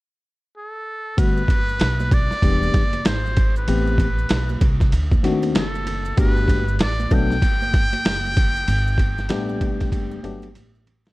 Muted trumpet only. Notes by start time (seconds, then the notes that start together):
0.57 A4
1.19 B4
2.13 D5
3.07 C5
3.58 B4
5.57 A4
6.20 B4
6.82 D5
7.14 G5